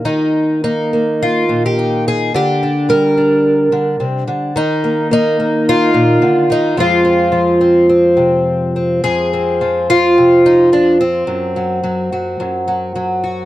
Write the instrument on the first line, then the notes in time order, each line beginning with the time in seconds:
twelve-string acoustic guitar
Already playing: A#3 G4
0.05 D#3 D#4
0.64 A#3 D#4
0.93 A#3
1.23 F4
1.49 A#2
1.66 G4
1.79 D#4
2.08 G#4
2.34 D3 G4
2.63 D4
2.89 G3 A#4
3.18 D4
3.72 D3
4.00 C3
4.27 D3
4.56 D#3 D#4
4.84 A#3
5.11 A#3 D#4
5.40 A#3
5.69 F4
5.94 A#2
6.22 D3
6.50 D#3 D#4
6.77 F2 F3 G#3 C4 F4
7.05 C4
7.32 F3
7.61 C4
7.89 C4
8.17 C3
8.76 C4
9.04 F2 G#4
9.33 C4
9.61 F3
9.90 F4
10.18 C3
10.46 D#4
10.72 F3 D4
11.01 C4
11.27 F#2
11.56 F#3
11.84 F#3
12.13 F#3
12.40 F#2
12.68 F#3
12.95 F#3
13.24 F#4